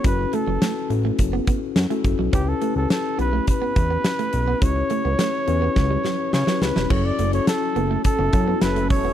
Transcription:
<<
  \new Staff \with { instrumentName = "Flugelhorn" } { \time 4/4 \key fis \phrygian \tempo 4 = 105 b'8 a'4 r2 r8 | g'16 a'8 a'16 a'8 b'8 b'2 | cis''2. cis''8 b'8 | cis''16 d''8 cis''16 a'4 a'4 b'8 cis''8 | }
  \new Staff \with { instrumentName = "Tine electric piano" } { \time 4/4 \key fis \phrygian <cis' e' fis' b'>4 r8 <cis' e' fis' a'>4~ <cis' e' fis' a'>16 r8 <cis' e' fis' a'>8 r16 | <cis' e' g' b'>16 r16 <cis' e' g' b'>8. r16 <cis' e' g' b'>4. r4 | <cis' e' g' cis''>4 r8 <cis' e' g' b'>4~ <cis' e' g' b'>16 r8 <cis' e' g' b'>8 r16 | <cis' e' fis' a'>8 r16 <cis' e' fis' a'>4~ <cis' e' fis' a'>16 r8 <cis' e' fis' a'>4 r8 | }
  \new Staff \with { instrumentName = "Analog synth pad" } { \time 4/4 \key fis \phrygian r1 | r1 | r1 | <fis cis' e' a'>1 | }
  \new Staff \with { instrumentName = "Clean electric guitar" } { \time 4/4 \key fis \phrygian r8 a16 fis16 a16 r8 a16 r16 b16 b16 r8 a16 r16 fis16 | cis'16 r16 a16 r8. b16 a16 r16 b16 r16 b16 r16 a16 r16 b16 | r8 a16 b16 a16 r8 b16 r16 g16 fis16 r8 fis16 r16 g16 | fis16 r16 a16 r8. b16 a16 r16 b16 r16 b16 r16 a16 r16 b16 | }
  \new Staff \with { instrumentName = "Analog synth bass" } { \clef bass \time 4/4 \key fis \phrygian fis,,8 r16 fis,,16 r8 a,,8 fis,,8 r8 fis,16 r16 fis,,16 b,,16 | cis,8 r16 cis,16 r8 b,,8 r8 e,8 r8 b,,8 | cis,8 r16 cis,16 r8 e,8 cis,8 r8 cis16 r16 cis,16 e,,16 | fis,,8 fis,,8 r8 fis,,8 r16 fis,,16 fis,8 fis,,8 e,,8 | }
  \new DrumStaff \with { instrumentName = "Drums" } \drummode { \time 4/4 <hh bd>8 hh8 <hh sn>8 hh8 <hh bd>8 <hh bd>8 <hh sn>16 hh16 <hh bd>8 | <hh bd>8 hh8 <hh sn>8 hh8 <hh bd>8 <hh bd>8 <hh sn>16 hh16 hh8 | <hh bd>8 hh8 <hh sn>8 hh8 <bd sn>8 sn8 sn16 sn16 sn16 sn16 | <cymc bd>8 hh16 hh16 <hh sn>8 hh8 <hh bd>8 <hh bd>8 <hh sn>16 hh16 <hho bd>8 | }
>>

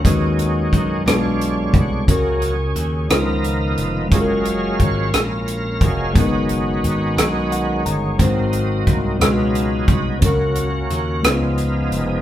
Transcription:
<<
  \new Staff \with { instrumentName = "Tine electric piano" } { \time 6/8 \key fis \major \tempo 4. = 59 <gis cis' dis' fis' b'>4. <gis b d' fis' b'>4. | <cis' fis' ais'>4. <gis cis' dis' eis' b'>4. | <gis cis' eis' fis' gis' ais'>2. | <gis b dis' fis' ais' b'>2. |
<gis bis dis' fis' bis'>4. <gis cis' dis' eis' fis' b'>4. | <cis' fis' ais'>4. <gis b cis' eis' b'>4. | }
  \new Staff \with { instrumentName = "Tine electric piano" } { \clef bass \time 6/8 \key fis \major dis4. b,4. | cis4. cis4. | r2. | r2 fis''8 ais''8 |
gis,4. b,4. | cis4. cis4. | }
  \new Staff \with { instrumentName = "Tonewheel organ" } { \time 6/8 \key fis \major << { dis'4. eis'4 fis'8 | gis'4. ais'4 r8 | gis'4 cis''8 ais'4 gis'8 | fis'2~ fis'8 r8 |
dis'4. eis'4 fis'8 | fis'4. eis'4 r8 | } \\ { fis4. d'4. | cis'4. <dis' eis'>4. | <cis' eis''>4. <cis' eis''>4. | <b dis'>2~ <b dis'>8 r8 |
r4. gis4. | r4. gis4. | } >> }
  \new Staff \with { instrumentName = "Tonewheel organ" } { \clef bass \time 6/8 \key fis \major <dis gis cis'>4. <d gis cis''>4. | <cis fis ais>8 r4 <dis eis b>4. | <fis gis ais>4. r4 <fis gis ais>8 | <dis gis cis'>2. |
<fis ais bis>4. <fis b dis'>4. | <fis ais cis'>8 r4 <eis b dis'>4. | }
  \new Staff \with { instrumentName = "Slap bass" } { \clef bass \time 6/8 \key fis \major dis,4 fis,8 b,,4 bis,,8 | cis,4 dis,8 cis,4 eis,,8 | fis,,4 gis,,8 ais,,4 eis,,8 | fis,,4 gis,,8 b,,4 g,,8 |
gis,,4 bis,,8 cis,4 bis,,8 | cis,4 dis,8 cis,4 eis,,8 | }
  \new DrumStaff \with { instrumentName = "Drums" } \drummode { \time 6/8 <hh bd>8 hh8 <hh bd>8 <hh ss>8 hh8 <hh bd>8 | <hh bd>8 hh8 hh8 <hh ss>8 hh8 hh8 | <hh bd>8 hh8 <hh bd>8 <hh ss>8 hh8 <hh bd>8 | <hh bd>8 hh8 hh8 <hh ss>8 hh8 hh8 |
<hh bd>8 hh8 <hh bd>8 <hh ss>8 hh8 <hh bd>8 | <hh bd>8 hh8 hh8 <hh ss>8 hh8 hh8 | }
>>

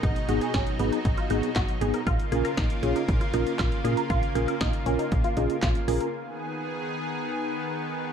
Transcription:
<<
  \new Staff \with { instrumentName = "Synth arpeggio sound" } { \time 4/4 \key gis \dorian \tempo 4 = 118 dis'8 fis'16 gis'16 cis'8 b16 dis'8 eis'16 dis'8 fis'8 gis'16 ais'16 | eis'8 gis'16 ais'16 dis'8 cis'16 dis'8 eis'16 dis'8 eis'8 gis'16 ais'16 | eis'8 gis'16 ais'16 dis'8 cis'16 dis'8 eis'16 dis'8 eis'8 gis'16 ais'16 | r1 | }
  \new Staff \with { instrumentName = "Tine electric piano" } { \time 4/4 \key gis \dorian r8 <b dis' gis'>8 r8 <b dis' gis'>8 r8 <b dis' gis'>8 r8 <b dis' gis'>8 | r8 <cis' eis' ais'>8 r8 <cis' eis' gis'>8 r8 <cis' eis' ais'>8 r8 <cis' eis' ais'>8 | r8 <cis' eis' ais'>8 r8 <cis' eis' ais'>8 r8 <cis' eis' gis'>8 r8 <cis' eis' ais'>8 | r1 | }
  \new Staff \with { instrumentName = "Analog synth pad" } { \time 4/4 \key gis \dorian <b, fis dis'>1 | <cis ais eis'>1~ | <cis ais eis'>1 | <dis b gis'>1 | }
  \new Staff \with { instrumentName = "FM bass" } { \clef bass \time 4/4 \key gis \dorian gis,,16 r16 gis,,16 r16 gis,,16 r16 gis,,16 r16 gis,,16 r16 gis,,16 r16 gis,,16 r16 gis,,16 r16 | ais,,16 r16 ais,,16 r16 ais,,16 r16 ais,,16 r16 ais,,16 r16 ais,,16 r16 ais,,16 r16 ais,16 r16 | ais,,16 r16 ais,,16 r16 ais,,16 r16 ais,,16 r16 ais,,16 r16 ais,,16 r16 ais,,16 r16 ais,,16 r16 | r1 | }
  \new DrumStaff \with { instrumentName = "Drums" } \drummode { \time 4/4 <hh bd>16 hh16 hh16 hh16 <hh bd sn>16 hh16 hh16 hh16 <hh bd>16 hh16 hh16 hh16 <hc hh bd sn>16 hh16 hh16 hh16 | <hh bd>16 hh16 hh16 hh16 <hh bd sn>16 hh16 hh16 hh16 <hh bd>16 hh16 hh16 hh16 <hc hh bd sn>16 hh16 hh16 hh16 | <hh bd>16 hh16 hh16 hh16 <hh bd sn>16 hh16 hh16 hh16 <hh bd>16 hh16 hh16 hh16 <hc hh bd sn>16 hh16 hho16 hh16 | r4 r4 r4 r4 | }
>>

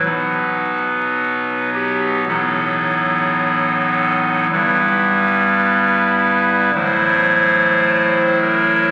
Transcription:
<<
  \new Staff \with { instrumentName = "Pipe organ" } { \time 4/4 \key b \phrygian \tempo 4 = 54 b'4. g'8 a'2 | b'2 c''4. ais'8 | }
  \new Staff \with { instrumentName = "Pipe organ" } { \clef bass \time 4/4 \key b \phrygian <b,, b, fis b dis'>2 <a,, a, fis b dis'>2 | <g,, g, g b e'>2 <a,, a, fis a e'>2 | }
>>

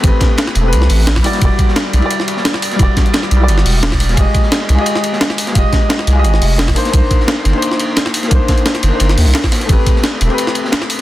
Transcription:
<<
  \new Staff \with { instrumentName = "Grand piano" } { \time 4/4 \key c \lydian \tempo 4 = 174 <a c' g' b'>4.~ <a c' g' b'>16 <a c' g' b'>4.~ <a c' g' b'>16 <g e' fis' d''>8 | <g e' fis' d''>4.~ <g e' fis' d''>16 <g e' fis' d''>2~ <g e' fis' d''>16 | <g e' fis' d''>4.~ <g e' fis' d''>16 <g e' fis' d''>4.~ <g e' fis' d''>16 r8 | <aes f' g' ees''>4.~ <aes f' g' ees''>16 <aes f' g' ees''>2~ <aes f' g' ees''>16 |
<aes f' g' ees''>4.~ <aes f' g' ees''>16 <aes f' g' ees''>4.~ <aes f' g' ees''>16 <bes d' ees' c''>8 | <bes d' ees' c''>4.~ <bes d' ees' c''>16 <bes d' ees' c''>2~ <bes d' ees' c''>16 | <bes d' ees' c''>4.~ <bes d' ees' c''>16 <bes d' ees' c''>4.~ <bes d' ees' c''>16 r8 | <a c' g' b'>4.~ <a c' g' b'>16 <a c' g' b'>2~ <a c' g' b'>16 | }
  \new Staff \with { instrumentName = "Sub bass" } { \clef bass \time 4/4 \key c \lydian a,,16 r4 r16 e,,8 c,8 a,,4 r8 | e,,16 r4 r16 b,,16 r2 r16 | e,,16 r4 r16 b,,8 g,,8 e,,4. | f,,16 r4 r16 c,16 r2 r16 |
f,,16 r4 r16 c,8 aes,,8 f,,4 r8 | c,16 r4 r16 g,,16 r2 r16 | c,16 r4 r16 g,,16 r16 g,,8 ees,16 c,16 r4 | a,,16 r4 r16 e,,16 r2 r16 | }
  \new DrumStaff \with { instrumentName = "Drums" } \drummode { \time 4/4 <hh bd cymr>8 <hh bd cymr sn>8 <hh cymr sn>16 sn16 <hh cymr>8 <hh cymr>16 sn16 <hh hho>8 <hh cymr sn>16 <bd sn>16 <hho cymr>16 <hh sn>16 | <hh bd cymr>8 <hh bd cymr>16 sn16 <hh cymr sn>8 <hh cymr>16 cymr16 <hh cymr>16 sn16 <hh cymr>16 sn16 <hh cymr sn>16 sn16 <hho cymr>16 <hh sn>16 | <hh bd cymr>8 <hh bd cymr sn>16 hh16 <hh cymr sn>16 sn16 <hh cymr>8 <hh cymr>16 sn16 <hh hho>8 <hh cymr sn>16 <bd sn>16 <hho cymr>16 <hh sn>16 | <hh bd cymr>8 <hh bd cymr>16 sn16 <hh cymr sn>8 <hh cymr>16 cymr16 <hh cymr>16 sn16 <hh cymr>16 sn16 <hh cymr sn>16 sn16 <hho cymr>16 <hh sn>16 |
<hh bd cymr>8 <hh bd cymr sn>8 <hh cymr sn>16 sn16 <hh cymr>8 <hh cymr>16 sn16 <hh hho>8 <hh cymr sn>16 <bd sn>16 <hho cymr>16 <hh sn>16 | <hh bd cymr>8 <hh bd cymr>16 sn16 <hh cymr sn>8 <hh cymr>16 cymr16 <hh cymr>16 sn16 <hh cymr>8 <hh cymr sn>16 sn16 <hho cymr>16 <hh sn>16 | <hh bd cymr>8 <hh bd cymr sn>16 hh16 <hh cymr sn>16 <hh sn>16 <hh cymr>8 <hh cymr>16 <hh sn>16 <hh hho>8 <hh cymr sn>16 <bd sn>16 <hho cymr sn>16 <hh sn>16 | <hh bd cymr>8 <hh bd cymr>16 sn16 <hh cymr sn>8 <hh cymr>16 cymr16 <hh cymr>16 sn16 <hh cymr>16 sn16 <hh cymr sn>16 sn16 <hho cymr>8 | }
>>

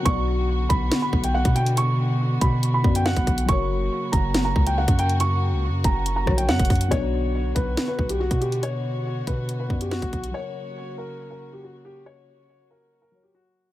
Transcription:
<<
  \new Staff \with { instrumentName = "Upright piano" } { \time 4/4 \key b \minor \tempo 4 = 140 cis'''4. b''8. b''8 g''16 fis''8 g''8 | cis'''4. b''8. b''8 g''16 fis''4 | cis'''4. ais''8. ais''8 g''16 fis''8 g''8 | cis'''4. ais''8. ais''8 g''16 fis''4 |
cis''4. b'8. b'8 g'16 fis'8 g'8 | cis''4. b'8. b'8 g'16 fis'4 | cis''4. ais'8. ais'8 g'16 fis'8 g'8 | cis''4. ais'8. ais'8 g'16 fis'4 | }
  \new Staff \with { instrumentName = "Grand piano" } { \time 4/4 \key b \minor <b, b fis' d''>1~ | <b, b fis' d''>2~ <b, b fis' d''>8 <b, b fis' d''>4. | <fis fis' ais' cis''>1~ | <fis fis' ais' cis''>2~ <fis fis' ais' cis''>8 <fis fis' ais' cis''>4. |
<b, b d' fis'>1~ | <b, b d' fis'>2~ <b, b d' fis'>8 <b, b fis' d''>4. | <fis fis' ais' cis''>1~ | <fis fis' ais' cis''>2~ <fis fis' ais' cis''>8 <fis fis' ais' cis''>4. | }
  \new Staff \with { instrumentName = "String section" } { \time 4/4 \key b \minor << { fis'1~ | fis'1 | fis'1~ | fis'1 |
fis'1~ | fis'1~ | fis'1~ | fis'1 | } \\ { <d b>1~ | <d b>1 | <cis ais>1~ | <cis ais>1 |
<d b>1~ | <d b>1 | <cis ais>1~ | <cis ais>1 | } >> }
  \new Staff \with { instrumentName = "808-style bass" } { \clef bass \time 4/4 \key b \minor b,,4. b,,8 r8 b,,8. b,8.~ | b,4. b,4 fis,8. b,,16 b,,8 | fis,,4 r8 fis,,4 cis,8. fis,8.~ | fis,8. cis,16. fis,16. fis,,4 ais,,8 fis,16 fis,,16 fis,8 |
b,,4. b,,8 r8 b,,8. b,8.~ | b,4. b,4 fis,8. b,,16 b,,8 | r1 | r1 | }
  \new DrumStaff \with { instrumentName = "Drums" } \drummode { \time 4/4 <hh bd>4 r8 <hh bd>8 <hh sn>8 bd16 hh16 r16 <hh bd>16 hh16 hh16 | hh4 r8 <hh bd>8 hh8 bd16 hh16 sn16 <hh bd>16 <hh bd>16 hh16 | <hh bd>4 r8 <hh bd>8 <hh sn>8 bd16 hh16 r16 <hh bd>16 hh16 hh16 | hh4 r8 <hh bd>8 hh8 <bd ss>16 hh16 sn16 <hh bd>32 hh32 <hh hho bd>32 hh32 hh16 |
<hh bd>4 r8 <hh bd>8 <hh sn>8 bd16 hh16 r16 <hh bd>16 hh16 hh16 | hh4 r8 <hh bd>8 hh8 bd16 hh16 sn16 <hh bd>16 <hh bd>16 hh16 | r4 r4 r4 r4 | r4 r4 r4 r4 | }
>>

